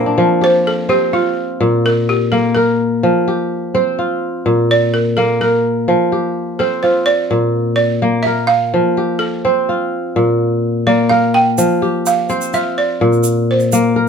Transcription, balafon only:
0.44 C5
0.67 A4
0.90 G4
1.13 F4
1.86 A#4
2.09 G4
2.32 A4
2.55 A#4
4.71 D5
4.94 A#4
5.17 A4
5.41 A#4
6.59 A4
6.83 C5
7.06 D5
7.76 D5
8.23 E5
8.47 F5
9.19 A4
10.87 D5
11.09 F5
11.34 G5
12.07 F5
12.54 E5
12.78 D5
13.51 C5

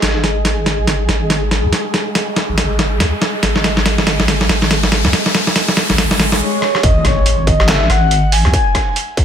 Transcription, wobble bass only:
0.02 G#1
0.79 G#1
1.09 G#1
1.64 C#2
2.49 G#1
2.71 G#1
3.00 D#2
3.43 G#1
4.19 G#1
4.49 G#1
5.05 C#2
5.90 G#1
6.11 G#1
6.83 G#1
7.60 G#1
7.90 G#1
8.45 C#2

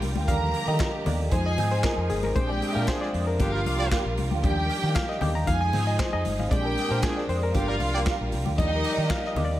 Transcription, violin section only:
0.28 A#4 A#5
1.32 G#4 G#5
2.36 G4 G5
3.40 F4 F5
4.43 G4 G5
5.47 G#4 G#5
6.51 G4 G5
7.55 F4 F5
8.58 D#4 D#5

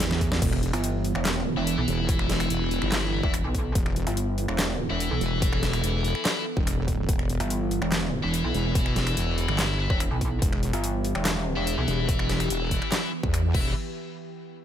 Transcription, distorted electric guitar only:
1.57 E4 B4 E5
3.13 E4 B4 E5
3.23 E4 B4 E5
4.90 E4 B4 E5
8.23 E4 B4 E5
9.79 E4 B4 E5
9.90 E4 B4 E5
11.56 E4 B4 E5
13.54 E4 B4 E5

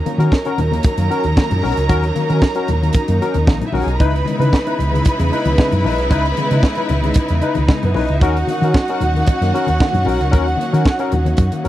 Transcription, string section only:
Already playing: F#3 C#4 D#4
4.01 C#3 G#3 B3 E4
8.21 F#3 C#4

